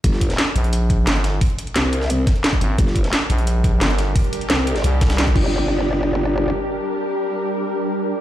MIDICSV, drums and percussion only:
0, 0, Header, 1, 2, 480
1, 0, Start_track
1, 0, Key_signature, -2, "minor"
1, 0, Tempo, 342857
1, 59, Time_signature, 4, 2, 24, 8
1, 11491, End_track
2, 0, Start_track
2, 0, Title_t, "Drums"
2, 58, Note_on_c, 9, 36, 121
2, 58, Note_on_c, 9, 42, 87
2, 59, Note_off_c, 9, 42, 0
2, 59, Note_on_c, 9, 42, 101
2, 179, Note_on_c, 9, 38, 38
2, 198, Note_off_c, 9, 36, 0
2, 199, Note_off_c, 9, 42, 0
2, 298, Note_on_c, 9, 36, 58
2, 298, Note_on_c, 9, 42, 69
2, 299, Note_off_c, 9, 42, 0
2, 299, Note_on_c, 9, 42, 69
2, 319, Note_off_c, 9, 38, 0
2, 418, Note_on_c, 9, 38, 42
2, 419, Note_off_c, 9, 42, 0
2, 419, Note_on_c, 9, 42, 39
2, 438, Note_off_c, 9, 36, 0
2, 538, Note_off_c, 9, 38, 0
2, 538, Note_off_c, 9, 42, 0
2, 538, Note_on_c, 9, 38, 127
2, 538, Note_on_c, 9, 42, 103
2, 678, Note_off_c, 9, 38, 0
2, 678, Note_off_c, 9, 42, 0
2, 779, Note_on_c, 9, 42, 70
2, 898, Note_off_c, 9, 42, 0
2, 898, Note_on_c, 9, 42, 48
2, 1018, Note_off_c, 9, 42, 0
2, 1018, Note_on_c, 9, 42, 97
2, 1019, Note_off_c, 9, 42, 0
2, 1019, Note_on_c, 9, 42, 98
2, 1159, Note_off_c, 9, 42, 0
2, 1258, Note_on_c, 9, 36, 108
2, 1260, Note_on_c, 9, 42, 77
2, 1398, Note_off_c, 9, 36, 0
2, 1400, Note_off_c, 9, 42, 0
2, 1498, Note_on_c, 9, 38, 115
2, 1498, Note_on_c, 9, 42, 93
2, 1500, Note_off_c, 9, 38, 0
2, 1500, Note_off_c, 9, 42, 0
2, 1500, Note_on_c, 9, 38, 127
2, 1500, Note_on_c, 9, 42, 99
2, 1619, Note_off_c, 9, 42, 0
2, 1619, Note_on_c, 9, 42, 45
2, 1640, Note_off_c, 9, 38, 0
2, 1738, Note_off_c, 9, 42, 0
2, 1738, Note_on_c, 9, 38, 50
2, 1738, Note_on_c, 9, 42, 65
2, 1739, Note_off_c, 9, 42, 0
2, 1739, Note_on_c, 9, 42, 70
2, 1878, Note_off_c, 9, 38, 0
2, 1879, Note_off_c, 9, 42, 0
2, 1978, Note_on_c, 9, 36, 127
2, 1979, Note_on_c, 9, 42, 102
2, 1979, Note_on_c, 9, 46, 79
2, 2099, Note_off_c, 9, 42, 0
2, 2099, Note_on_c, 9, 42, 44
2, 2118, Note_off_c, 9, 36, 0
2, 2119, Note_off_c, 9, 46, 0
2, 2219, Note_off_c, 9, 42, 0
2, 2219, Note_on_c, 9, 42, 74
2, 2339, Note_off_c, 9, 42, 0
2, 2339, Note_on_c, 9, 42, 38
2, 2458, Note_off_c, 9, 42, 0
2, 2458, Note_on_c, 9, 38, 111
2, 2458, Note_on_c, 9, 42, 90
2, 2459, Note_off_c, 9, 38, 0
2, 2459, Note_off_c, 9, 42, 0
2, 2459, Note_on_c, 9, 38, 123
2, 2459, Note_on_c, 9, 42, 103
2, 2599, Note_off_c, 9, 38, 0
2, 2599, Note_off_c, 9, 42, 0
2, 2699, Note_on_c, 9, 42, 67
2, 2818, Note_on_c, 9, 38, 41
2, 2839, Note_off_c, 9, 42, 0
2, 2939, Note_on_c, 9, 42, 100
2, 2958, Note_off_c, 9, 38, 0
2, 3079, Note_off_c, 9, 42, 0
2, 3178, Note_on_c, 9, 36, 116
2, 3178, Note_on_c, 9, 42, 76
2, 3179, Note_off_c, 9, 42, 0
2, 3179, Note_on_c, 9, 38, 58
2, 3179, Note_on_c, 9, 42, 72
2, 3299, Note_off_c, 9, 42, 0
2, 3299, Note_on_c, 9, 42, 45
2, 3318, Note_off_c, 9, 36, 0
2, 3319, Note_off_c, 9, 38, 0
2, 3418, Note_off_c, 9, 42, 0
2, 3418, Note_on_c, 9, 38, 127
2, 3418, Note_on_c, 9, 42, 101
2, 3419, Note_off_c, 9, 38, 0
2, 3419, Note_off_c, 9, 42, 0
2, 3419, Note_on_c, 9, 38, 122
2, 3419, Note_on_c, 9, 42, 89
2, 3538, Note_on_c, 9, 36, 66
2, 3539, Note_off_c, 9, 42, 0
2, 3539, Note_on_c, 9, 42, 45
2, 3559, Note_off_c, 9, 38, 0
2, 3658, Note_off_c, 9, 42, 0
2, 3658, Note_on_c, 9, 42, 68
2, 3678, Note_off_c, 9, 36, 0
2, 3798, Note_off_c, 9, 42, 0
2, 3898, Note_on_c, 9, 36, 127
2, 3898, Note_on_c, 9, 42, 93
2, 3899, Note_off_c, 9, 42, 0
2, 3899, Note_on_c, 9, 42, 100
2, 4018, Note_on_c, 9, 38, 41
2, 4038, Note_off_c, 9, 36, 0
2, 4039, Note_off_c, 9, 42, 0
2, 4138, Note_on_c, 9, 36, 64
2, 4138, Note_on_c, 9, 42, 72
2, 4139, Note_off_c, 9, 42, 0
2, 4139, Note_on_c, 9, 42, 67
2, 4158, Note_off_c, 9, 38, 0
2, 4259, Note_off_c, 9, 42, 0
2, 4259, Note_on_c, 9, 38, 44
2, 4259, Note_on_c, 9, 42, 38
2, 4278, Note_off_c, 9, 36, 0
2, 4378, Note_off_c, 9, 38, 0
2, 4378, Note_off_c, 9, 42, 0
2, 4378, Note_on_c, 9, 38, 117
2, 4378, Note_on_c, 9, 42, 91
2, 4379, Note_off_c, 9, 38, 0
2, 4379, Note_off_c, 9, 42, 0
2, 4379, Note_on_c, 9, 38, 127
2, 4379, Note_on_c, 9, 42, 95
2, 4519, Note_off_c, 9, 38, 0
2, 4519, Note_off_c, 9, 42, 0
2, 4618, Note_on_c, 9, 42, 70
2, 4619, Note_off_c, 9, 42, 0
2, 4619, Note_on_c, 9, 42, 68
2, 4738, Note_off_c, 9, 42, 0
2, 4738, Note_on_c, 9, 42, 45
2, 4859, Note_off_c, 9, 42, 0
2, 4859, Note_on_c, 9, 42, 95
2, 4999, Note_off_c, 9, 42, 0
2, 5098, Note_on_c, 9, 36, 116
2, 5099, Note_on_c, 9, 42, 72
2, 5100, Note_off_c, 9, 42, 0
2, 5100, Note_on_c, 9, 42, 73
2, 5238, Note_off_c, 9, 36, 0
2, 5240, Note_off_c, 9, 42, 0
2, 5339, Note_on_c, 9, 38, 118
2, 5339, Note_on_c, 9, 42, 90
2, 5459, Note_off_c, 9, 42, 0
2, 5459, Note_on_c, 9, 42, 44
2, 5479, Note_off_c, 9, 38, 0
2, 5579, Note_off_c, 9, 42, 0
2, 5579, Note_on_c, 9, 38, 47
2, 5579, Note_on_c, 9, 42, 64
2, 5719, Note_off_c, 9, 38, 0
2, 5719, Note_off_c, 9, 42, 0
2, 5818, Note_on_c, 9, 36, 127
2, 5819, Note_on_c, 9, 42, 98
2, 5819, Note_on_c, 9, 46, 85
2, 5940, Note_off_c, 9, 42, 0
2, 5940, Note_on_c, 9, 42, 47
2, 5958, Note_off_c, 9, 36, 0
2, 5959, Note_off_c, 9, 46, 0
2, 6059, Note_off_c, 9, 42, 0
2, 6059, Note_on_c, 9, 42, 67
2, 6060, Note_off_c, 9, 42, 0
2, 6060, Note_on_c, 9, 42, 70
2, 6179, Note_off_c, 9, 42, 0
2, 6179, Note_on_c, 9, 42, 39
2, 6298, Note_off_c, 9, 42, 0
2, 6298, Note_on_c, 9, 38, 127
2, 6298, Note_on_c, 9, 42, 92
2, 6299, Note_off_c, 9, 38, 0
2, 6299, Note_off_c, 9, 42, 0
2, 6299, Note_on_c, 9, 38, 120
2, 6299, Note_on_c, 9, 42, 86
2, 6439, Note_off_c, 9, 38, 0
2, 6439, Note_off_c, 9, 42, 0
2, 6539, Note_on_c, 9, 42, 73
2, 6659, Note_off_c, 9, 42, 0
2, 6659, Note_on_c, 9, 42, 36
2, 6660, Note_on_c, 9, 38, 40
2, 6778, Note_off_c, 9, 42, 0
2, 6778, Note_on_c, 9, 42, 91
2, 6779, Note_off_c, 9, 42, 0
2, 6779, Note_on_c, 9, 42, 95
2, 6800, Note_off_c, 9, 38, 0
2, 6919, Note_off_c, 9, 42, 0
2, 7018, Note_on_c, 9, 36, 110
2, 7018, Note_on_c, 9, 38, 110
2, 7018, Note_on_c, 9, 42, 82
2, 7019, Note_off_c, 9, 42, 0
2, 7019, Note_on_c, 9, 42, 72
2, 7138, Note_off_c, 9, 38, 0
2, 7138, Note_off_c, 9, 42, 0
2, 7138, Note_on_c, 9, 38, 105
2, 7138, Note_on_c, 9, 42, 80
2, 7158, Note_off_c, 9, 36, 0
2, 7258, Note_off_c, 9, 38, 0
2, 7258, Note_off_c, 9, 42, 0
2, 7258, Note_on_c, 9, 38, 127
2, 7258, Note_on_c, 9, 42, 96
2, 7378, Note_off_c, 9, 42, 0
2, 7378, Note_on_c, 9, 36, 65
2, 7378, Note_on_c, 9, 42, 44
2, 7398, Note_off_c, 9, 38, 0
2, 7498, Note_off_c, 9, 36, 0
2, 7498, Note_on_c, 9, 36, 121
2, 7499, Note_on_c, 9, 49, 92
2, 7518, Note_off_c, 9, 42, 0
2, 7638, Note_off_c, 9, 36, 0
2, 7639, Note_off_c, 9, 49, 0
2, 11491, End_track
0, 0, End_of_file